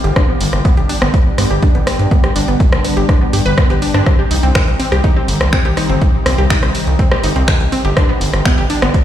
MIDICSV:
0, 0, Header, 1, 5, 480
1, 0, Start_track
1, 0, Key_signature, -3, "minor"
1, 0, Tempo, 487805
1, 159, Time_signature, 4, 2, 24, 8
1, 8899, End_track
2, 0, Start_track
2, 0, Title_t, "Synth pluck"
2, 0, Program_c, 0, 84
2, 41, Note_on_c, 0, 67, 72
2, 129, Note_off_c, 0, 67, 0
2, 159, Note_on_c, 0, 62, 78
2, 275, Note_off_c, 0, 62, 0
2, 281, Note_on_c, 0, 59, 75
2, 369, Note_off_c, 0, 59, 0
2, 639, Note_on_c, 0, 59, 86
2, 730, Note_off_c, 0, 59, 0
2, 761, Note_on_c, 0, 67, 73
2, 849, Note_off_c, 0, 67, 0
2, 879, Note_on_c, 0, 62, 76
2, 995, Note_off_c, 0, 62, 0
2, 1001, Note_on_c, 0, 59, 77
2, 1089, Note_off_c, 0, 59, 0
2, 1359, Note_on_c, 0, 59, 73
2, 1450, Note_off_c, 0, 59, 0
2, 1481, Note_on_c, 0, 67, 77
2, 1569, Note_off_c, 0, 67, 0
2, 1600, Note_on_c, 0, 62, 83
2, 1716, Note_off_c, 0, 62, 0
2, 1721, Note_on_c, 0, 59, 73
2, 1809, Note_off_c, 0, 59, 0
2, 2079, Note_on_c, 0, 59, 75
2, 2170, Note_off_c, 0, 59, 0
2, 2202, Note_on_c, 0, 67, 75
2, 2289, Note_off_c, 0, 67, 0
2, 2319, Note_on_c, 0, 62, 75
2, 2435, Note_off_c, 0, 62, 0
2, 2441, Note_on_c, 0, 59, 79
2, 2529, Note_off_c, 0, 59, 0
2, 2799, Note_on_c, 0, 59, 73
2, 2890, Note_off_c, 0, 59, 0
2, 2921, Note_on_c, 0, 67, 75
2, 3009, Note_off_c, 0, 67, 0
2, 3039, Note_on_c, 0, 62, 79
2, 3155, Note_off_c, 0, 62, 0
2, 3161, Note_on_c, 0, 59, 73
2, 3249, Note_off_c, 0, 59, 0
2, 3279, Note_on_c, 0, 67, 73
2, 3370, Note_off_c, 0, 67, 0
2, 3401, Note_on_c, 0, 71, 99
2, 3489, Note_off_c, 0, 71, 0
2, 3519, Note_on_c, 0, 59, 81
2, 3573, Note_off_c, 0, 59, 0
2, 3641, Note_on_c, 0, 67, 74
2, 3728, Note_off_c, 0, 67, 0
2, 3759, Note_on_c, 0, 62, 69
2, 3850, Note_off_c, 0, 62, 0
2, 3881, Note_on_c, 0, 62, 95
2, 3993, Note_off_c, 0, 62, 0
2, 3999, Note_on_c, 0, 60, 79
2, 4089, Note_off_c, 0, 60, 0
2, 4121, Note_on_c, 0, 67, 73
2, 4208, Note_off_c, 0, 67, 0
2, 4239, Note_on_c, 0, 63, 75
2, 4355, Note_off_c, 0, 63, 0
2, 4361, Note_on_c, 0, 60, 78
2, 4448, Note_off_c, 0, 60, 0
2, 4718, Note_on_c, 0, 60, 78
2, 4809, Note_off_c, 0, 60, 0
2, 4841, Note_on_c, 0, 67, 79
2, 4928, Note_off_c, 0, 67, 0
2, 4959, Note_on_c, 0, 63, 81
2, 5075, Note_off_c, 0, 63, 0
2, 5081, Note_on_c, 0, 60, 75
2, 5169, Note_off_c, 0, 60, 0
2, 5439, Note_on_c, 0, 60, 84
2, 5529, Note_off_c, 0, 60, 0
2, 5561, Note_on_c, 0, 67, 75
2, 5649, Note_off_c, 0, 67, 0
2, 5679, Note_on_c, 0, 63, 75
2, 5795, Note_off_c, 0, 63, 0
2, 5801, Note_on_c, 0, 60, 70
2, 5888, Note_off_c, 0, 60, 0
2, 6159, Note_on_c, 0, 60, 75
2, 6250, Note_off_c, 0, 60, 0
2, 6281, Note_on_c, 0, 67, 75
2, 6369, Note_off_c, 0, 67, 0
2, 6399, Note_on_c, 0, 63, 86
2, 6515, Note_off_c, 0, 63, 0
2, 6521, Note_on_c, 0, 60, 77
2, 6608, Note_off_c, 0, 60, 0
2, 6879, Note_on_c, 0, 60, 79
2, 6969, Note_off_c, 0, 60, 0
2, 7001, Note_on_c, 0, 67, 76
2, 7089, Note_off_c, 0, 67, 0
2, 7119, Note_on_c, 0, 63, 76
2, 7235, Note_off_c, 0, 63, 0
2, 7241, Note_on_c, 0, 60, 73
2, 7328, Note_off_c, 0, 60, 0
2, 7599, Note_on_c, 0, 60, 72
2, 7690, Note_off_c, 0, 60, 0
2, 7721, Note_on_c, 0, 67, 70
2, 7809, Note_off_c, 0, 67, 0
2, 7839, Note_on_c, 0, 62, 78
2, 7955, Note_off_c, 0, 62, 0
2, 7961, Note_on_c, 0, 59, 76
2, 8049, Note_off_c, 0, 59, 0
2, 8319, Note_on_c, 0, 59, 83
2, 8410, Note_off_c, 0, 59, 0
2, 8441, Note_on_c, 0, 67, 75
2, 8529, Note_off_c, 0, 67, 0
2, 8559, Note_on_c, 0, 62, 78
2, 8675, Note_off_c, 0, 62, 0
2, 8681, Note_on_c, 0, 59, 77
2, 8769, Note_off_c, 0, 59, 0
2, 8899, End_track
3, 0, Start_track
3, 0, Title_t, "Ambient pad"
3, 0, Program_c, 1, 92
3, 0, Note_on_c, 1, 48, 80
3, 0, Note_on_c, 1, 51, 72
3, 0, Note_on_c, 1, 55, 75
3, 0, Note_on_c, 1, 65, 73
3, 0, Note_on_c, 1, 67, 85
3, 120, Note_off_c, 1, 67, 0
3, 121, Note_off_c, 1, 48, 0
3, 121, Note_off_c, 1, 51, 0
3, 140, Note_off_c, 1, 65, 0
3, 159, Note_on_c, 1, 47, 81
3, 159, Note_on_c, 1, 50, 75
3, 159, Note_on_c, 1, 62, 70
3, 159, Note_on_c, 1, 67, 86
3, 3960, Note_off_c, 1, 55, 0
3, 3961, Note_off_c, 1, 47, 0
3, 3961, Note_off_c, 1, 50, 0
3, 3961, Note_off_c, 1, 62, 0
3, 3999, Note_on_c, 1, 51, 70
3, 3999, Note_on_c, 1, 63, 72
3, 4000, Note_on_c, 1, 48, 77
3, 4000, Note_on_c, 1, 55, 74
3, 7801, Note_off_c, 1, 48, 0
3, 7801, Note_off_c, 1, 51, 0
3, 7801, Note_off_c, 1, 63, 0
3, 7839, Note_on_c, 1, 47, 79
3, 7839, Note_on_c, 1, 50, 72
3, 7839, Note_on_c, 1, 62, 76
3, 8899, Note_off_c, 1, 47, 0
3, 8899, Note_off_c, 1, 50, 0
3, 8899, Note_off_c, 1, 55, 0
3, 8899, Note_off_c, 1, 62, 0
3, 8899, Note_off_c, 1, 67, 0
3, 8899, End_track
4, 0, Start_track
4, 0, Title_t, "Analog synth bass"
4, 0, Program_c, 2, 38
4, 41, Note_on_c, 2, 31, 85
4, 116, Note_off_c, 2, 31, 0
4, 399, Note_on_c, 2, 31, 93
4, 476, Note_off_c, 2, 31, 0
4, 521, Note_on_c, 2, 31, 81
4, 596, Note_off_c, 2, 31, 0
4, 761, Note_on_c, 2, 31, 71
4, 836, Note_off_c, 2, 31, 0
4, 1001, Note_on_c, 2, 31, 77
4, 1076, Note_off_c, 2, 31, 0
4, 1359, Note_on_c, 2, 43, 90
4, 1436, Note_off_c, 2, 43, 0
4, 1481, Note_on_c, 2, 31, 78
4, 1556, Note_off_c, 2, 31, 0
4, 1721, Note_on_c, 2, 31, 73
4, 1796, Note_off_c, 2, 31, 0
4, 1961, Note_on_c, 2, 43, 80
4, 2036, Note_off_c, 2, 43, 0
4, 2319, Note_on_c, 2, 31, 90
4, 2396, Note_off_c, 2, 31, 0
4, 2441, Note_on_c, 2, 31, 78
4, 2516, Note_off_c, 2, 31, 0
4, 2681, Note_on_c, 2, 31, 72
4, 2756, Note_off_c, 2, 31, 0
4, 2921, Note_on_c, 2, 31, 80
4, 2996, Note_off_c, 2, 31, 0
4, 3279, Note_on_c, 2, 43, 91
4, 3356, Note_off_c, 2, 43, 0
4, 3401, Note_on_c, 2, 31, 76
4, 3476, Note_off_c, 2, 31, 0
4, 3641, Note_on_c, 2, 31, 71
4, 3716, Note_off_c, 2, 31, 0
4, 3881, Note_on_c, 2, 43, 80
4, 3956, Note_off_c, 2, 43, 0
4, 4239, Note_on_c, 2, 36, 92
4, 4316, Note_off_c, 2, 36, 0
4, 4361, Note_on_c, 2, 36, 82
4, 4436, Note_off_c, 2, 36, 0
4, 4601, Note_on_c, 2, 36, 72
4, 4676, Note_off_c, 2, 36, 0
4, 4841, Note_on_c, 2, 36, 80
4, 4916, Note_off_c, 2, 36, 0
4, 5199, Note_on_c, 2, 31, 92
4, 5276, Note_off_c, 2, 31, 0
4, 5321, Note_on_c, 2, 36, 77
4, 5396, Note_off_c, 2, 36, 0
4, 5561, Note_on_c, 2, 36, 75
4, 5636, Note_off_c, 2, 36, 0
4, 5801, Note_on_c, 2, 31, 83
4, 5876, Note_off_c, 2, 31, 0
4, 6159, Note_on_c, 2, 36, 92
4, 6236, Note_off_c, 2, 36, 0
4, 6281, Note_on_c, 2, 36, 80
4, 6356, Note_off_c, 2, 36, 0
4, 6521, Note_on_c, 2, 36, 74
4, 6596, Note_off_c, 2, 36, 0
4, 6761, Note_on_c, 2, 36, 77
4, 6836, Note_off_c, 2, 36, 0
4, 7119, Note_on_c, 2, 31, 91
4, 7196, Note_off_c, 2, 31, 0
4, 7241, Note_on_c, 2, 36, 77
4, 7316, Note_off_c, 2, 36, 0
4, 7481, Note_on_c, 2, 36, 75
4, 7556, Note_off_c, 2, 36, 0
4, 7721, Note_on_c, 2, 31, 84
4, 7796, Note_off_c, 2, 31, 0
4, 8079, Note_on_c, 2, 31, 91
4, 8156, Note_off_c, 2, 31, 0
4, 8201, Note_on_c, 2, 31, 83
4, 8276, Note_off_c, 2, 31, 0
4, 8441, Note_on_c, 2, 31, 74
4, 8516, Note_off_c, 2, 31, 0
4, 8682, Note_on_c, 2, 31, 76
4, 8756, Note_off_c, 2, 31, 0
4, 8899, End_track
5, 0, Start_track
5, 0, Title_t, "Drums"
5, 42, Note_on_c, 9, 42, 32
5, 140, Note_off_c, 9, 42, 0
5, 159, Note_on_c, 9, 36, 116
5, 159, Note_on_c, 9, 37, 72
5, 159, Note_on_c, 9, 42, 41
5, 258, Note_off_c, 9, 36, 0
5, 258, Note_off_c, 9, 37, 0
5, 258, Note_off_c, 9, 42, 0
5, 399, Note_on_c, 9, 46, 109
5, 498, Note_off_c, 9, 46, 0
5, 521, Note_on_c, 9, 37, 48
5, 521, Note_on_c, 9, 42, 32
5, 620, Note_off_c, 9, 37, 0
5, 620, Note_off_c, 9, 42, 0
5, 639, Note_on_c, 9, 36, 127
5, 640, Note_on_c, 9, 42, 43
5, 738, Note_off_c, 9, 36, 0
5, 738, Note_off_c, 9, 42, 0
5, 761, Note_on_c, 9, 42, 28
5, 860, Note_off_c, 9, 42, 0
5, 879, Note_on_c, 9, 46, 91
5, 978, Note_off_c, 9, 46, 0
5, 1001, Note_on_c, 9, 37, 71
5, 1001, Note_on_c, 9, 42, 33
5, 1100, Note_off_c, 9, 37, 0
5, 1100, Note_off_c, 9, 42, 0
5, 1119, Note_on_c, 9, 36, 125
5, 1120, Note_on_c, 9, 42, 43
5, 1218, Note_off_c, 9, 36, 0
5, 1218, Note_off_c, 9, 42, 0
5, 1359, Note_on_c, 9, 37, 50
5, 1359, Note_on_c, 9, 46, 111
5, 1458, Note_off_c, 9, 37, 0
5, 1458, Note_off_c, 9, 46, 0
5, 1482, Note_on_c, 9, 42, 30
5, 1580, Note_off_c, 9, 42, 0
5, 1599, Note_on_c, 9, 36, 118
5, 1600, Note_on_c, 9, 42, 42
5, 1698, Note_off_c, 9, 36, 0
5, 1698, Note_off_c, 9, 42, 0
5, 1722, Note_on_c, 9, 42, 29
5, 1820, Note_off_c, 9, 42, 0
5, 1839, Note_on_c, 9, 37, 68
5, 1839, Note_on_c, 9, 46, 92
5, 1938, Note_off_c, 9, 37, 0
5, 1938, Note_off_c, 9, 46, 0
5, 1962, Note_on_c, 9, 42, 30
5, 2060, Note_off_c, 9, 42, 0
5, 2079, Note_on_c, 9, 36, 115
5, 2079, Note_on_c, 9, 42, 41
5, 2178, Note_off_c, 9, 36, 0
5, 2178, Note_off_c, 9, 42, 0
5, 2202, Note_on_c, 9, 37, 53
5, 2202, Note_on_c, 9, 42, 29
5, 2300, Note_off_c, 9, 37, 0
5, 2300, Note_off_c, 9, 42, 0
5, 2319, Note_on_c, 9, 46, 108
5, 2418, Note_off_c, 9, 46, 0
5, 2441, Note_on_c, 9, 42, 30
5, 2540, Note_off_c, 9, 42, 0
5, 2559, Note_on_c, 9, 36, 121
5, 2560, Note_on_c, 9, 42, 41
5, 2658, Note_off_c, 9, 36, 0
5, 2658, Note_off_c, 9, 42, 0
5, 2681, Note_on_c, 9, 37, 69
5, 2681, Note_on_c, 9, 42, 28
5, 2780, Note_off_c, 9, 37, 0
5, 2780, Note_off_c, 9, 42, 0
5, 2799, Note_on_c, 9, 46, 93
5, 2898, Note_off_c, 9, 46, 0
5, 2922, Note_on_c, 9, 42, 31
5, 3020, Note_off_c, 9, 42, 0
5, 3039, Note_on_c, 9, 36, 119
5, 3039, Note_on_c, 9, 37, 48
5, 3039, Note_on_c, 9, 42, 40
5, 3138, Note_off_c, 9, 36, 0
5, 3138, Note_off_c, 9, 37, 0
5, 3138, Note_off_c, 9, 42, 0
5, 3279, Note_on_c, 9, 46, 106
5, 3378, Note_off_c, 9, 46, 0
5, 3401, Note_on_c, 9, 42, 30
5, 3500, Note_off_c, 9, 42, 0
5, 3519, Note_on_c, 9, 36, 118
5, 3519, Note_on_c, 9, 37, 73
5, 3519, Note_on_c, 9, 42, 40
5, 3617, Note_off_c, 9, 37, 0
5, 3617, Note_off_c, 9, 42, 0
5, 3618, Note_off_c, 9, 36, 0
5, 3641, Note_on_c, 9, 42, 28
5, 3740, Note_off_c, 9, 42, 0
5, 3759, Note_on_c, 9, 46, 86
5, 3858, Note_off_c, 9, 46, 0
5, 3881, Note_on_c, 9, 37, 49
5, 3881, Note_on_c, 9, 42, 30
5, 3980, Note_off_c, 9, 37, 0
5, 3980, Note_off_c, 9, 42, 0
5, 3999, Note_on_c, 9, 36, 110
5, 3999, Note_on_c, 9, 37, 53
5, 3999, Note_on_c, 9, 42, 40
5, 4097, Note_off_c, 9, 37, 0
5, 4097, Note_off_c, 9, 42, 0
5, 4098, Note_off_c, 9, 36, 0
5, 4239, Note_on_c, 9, 46, 104
5, 4338, Note_off_c, 9, 46, 0
5, 4361, Note_on_c, 9, 42, 32
5, 4459, Note_off_c, 9, 42, 0
5, 4479, Note_on_c, 9, 26, 96
5, 4479, Note_on_c, 9, 36, 120
5, 4479, Note_on_c, 9, 37, 77
5, 4479, Note_on_c, 9, 42, 42
5, 4577, Note_off_c, 9, 26, 0
5, 4577, Note_off_c, 9, 37, 0
5, 4577, Note_off_c, 9, 42, 0
5, 4578, Note_off_c, 9, 36, 0
5, 4601, Note_on_c, 9, 42, 29
5, 4699, Note_off_c, 9, 42, 0
5, 4719, Note_on_c, 9, 46, 86
5, 4817, Note_off_c, 9, 46, 0
5, 4841, Note_on_c, 9, 37, 51
5, 4841, Note_on_c, 9, 42, 30
5, 4939, Note_off_c, 9, 37, 0
5, 4939, Note_off_c, 9, 42, 0
5, 4959, Note_on_c, 9, 36, 112
5, 4959, Note_on_c, 9, 42, 42
5, 5057, Note_off_c, 9, 42, 0
5, 5058, Note_off_c, 9, 36, 0
5, 5199, Note_on_c, 9, 46, 109
5, 5297, Note_off_c, 9, 46, 0
5, 5321, Note_on_c, 9, 37, 75
5, 5321, Note_on_c, 9, 42, 32
5, 5419, Note_off_c, 9, 37, 0
5, 5419, Note_off_c, 9, 42, 0
5, 5439, Note_on_c, 9, 26, 97
5, 5439, Note_on_c, 9, 36, 115
5, 5439, Note_on_c, 9, 42, 40
5, 5537, Note_off_c, 9, 26, 0
5, 5537, Note_off_c, 9, 42, 0
5, 5538, Note_off_c, 9, 36, 0
5, 5561, Note_on_c, 9, 42, 29
5, 5659, Note_off_c, 9, 42, 0
5, 5679, Note_on_c, 9, 37, 51
5, 5679, Note_on_c, 9, 46, 84
5, 5777, Note_off_c, 9, 37, 0
5, 5777, Note_off_c, 9, 46, 0
5, 5801, Note_on_c, 9, 42, 31
5, 5900, Note_off_c, 9, 42, 0
5, 5919, Note_on_c, 9, 36, 108
5, 5919, Note_on_c, 9, 42, 42
5, 6018, Note_off_c, 9, 36, 0
5, 6018, Note_off_c, 9, 42, 0
5, 6159, Note_on_c, 9, 37, 81
5, 6159, Note_on_c, 9, 46, 97
5, 6258, Note_off_c, 9, 37, 0
5, 6258, Note_off_c, 9, 46, 0
5, 6282, Note_on_c, 9, 42, 33
5, 6380, Note_off_c, 9, 42, 0
5, 6399, Note_on_c, 9, 36, 113
5, 6400, Note_on_c, 9, 26, 102
5, 6400, Note_on_c, 9, 42, 42
5, 6498, Note_off_c, 9, 26, 0
5, 6498, Note_off_c, 9, 36, 0
5, 6498, Note_off_c, 9, 42, 0
5, 6522, Note_on_c, 9, 37, 52
5, 6522, Note_on_c, 9, 42, 29
5, 6620, Note_off_c, 9, 37, 0
5, 6620, Note_off_c, 9, 42, 0
5, 6639, Note_on_c, 9, 46, 89
5, 6738, Note_off_c, 9, 46, 0
5, 6762, Note_on_c, 9, 42, 32
5, 6860, Note_off_c, 9, 42, 0
5, 6879, Note_on_c, 9, 36, 109
5, 6879, Note_on_c, 9, 42, 42
5, 6978, Note_off_c, 9, 36, 0
5, 6978, Note_off_c, 9, 42, 0
5, 7001, Note_on_c, 9, 37, 83
5, 7100, Note_off_c, 9, 37, 0
5, 7119, Note_on_c, 9, 46, 104
5, 7218, Note_off_c, 9, 46, 0
5, 7241, Note_on_c, 9, 42, 33
5, 7340, Note_off_c, 9, 42, 0
5, 7359, Note_on_c, 9, 26, 96
5, 7359, Note_on_c, 9, 36, 110
5, 7359, Note_on_c, 9, 37, 50
5, 7359, Note_on_c, 9, 42, 44
5, 7458, Note_off_c, 9, 26, 0
5, 7458, Note_off_c, 9, 36, 0
5, 7458, Note_off_c, 9, 37, 0
5, 7458, Note_off_c, 9, 42, 0
5, 7481, Note_on_c, 9, 42, 30
5, 7580, Note_off_c, 9, 42, 0
5, 7599, Note_on_c, 9, 46, 78
5, 7697, Note_off_c, 9, 46, 0
5, 7721, Note_on_c, 9, 42, 32
5, 7820, Note_off_c, 9, 42, 0
5, 7839, Note_on_c, 9, 36, 106
5, 7839, Note_on_c, 9, 37, 82
5, 7839, Note_on_c, 9, 42, 44
5, 7938, Note_off_c, 9, 36, 0
5, 7938, Note_off_c, 9, 37, 0
5, 7938, Note_off_c, 9, 42, 0
5, 8079, Note_on_c, 9, 46, 99
5, 8178, Note_off_c, 9, 46, 0
5, 8201, Note_on_c, 9, 37, 54
5, 8201, Note_on_c, 9, 42, 35
5, 8300, Note_off_c, 9, 37, 0
5, 8300, Note_off_c, 9, 42, 0
5, 8319, Note_on_c, 9, 26, 105
5, 8319, Note_on_c, 9, 36, 114
5, 8319, Note_on_c, 9, 42, 46
5, 8418, Note_off_c, 9, 26, 0
5, 8418, Note_off_c, 9, 36, 0
5, 8418, Note_off_c, 9, 42, 0
5, 8441, Note_on_c, 9, 42, 29
5, 8540, Note_off_c, 9, 42, 0
5, 8559, Note_on_c, 9, 46, 85
5, 8658, Note_off_c, 9, 46, 0
5, 8682, Note_on_c, 9, 37, 84
5, 8682, Note_on_c, 9, 42, 35
5, 8780, Note_off_c, 9, 37, 0
5, 8780, Note_off_c, 9, 42, 0
5, 8799, Note_on_c, 9, 36, 106
5, 8800, Note_on_c, 9, 42, 44
5, 8898, Note_off_c, 9, 36, 0
5, 8898, Note_off_c, 9, 42, 0
5, 8899, End_track
0, 0, End_of_file